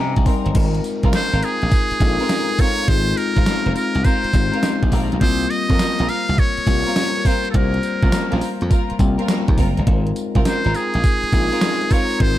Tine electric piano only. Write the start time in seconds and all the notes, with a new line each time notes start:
Already playing: G3 C4 D4 D#4 A#4 C5 D#5 F5 G5 G#5 A#5
0.26 G3 C4 D#4 A#4 C6
0.55 G#3 C4 D#4 F4 A#4
2.00 G#3 C4 D#4 F4 A4
2.08 A#4
2.88 G#3 C4 D#4 F4 G#4
4.34 G#3 C4 D#4 F4 G4
5.21 G3 A#3 C4 F4 A#4
6.67 G3 A#3 C4 F4 A#4
7.54 G3 A#3 C4 F4 C5
8.99 G3 A#3 C4 F4 G4
9.87 G#3 C4 D#4 F4 A#4
11.32 G#3 C4 D#4 F4 A#4
12.20 G#3 C4 D#4 F4 A#4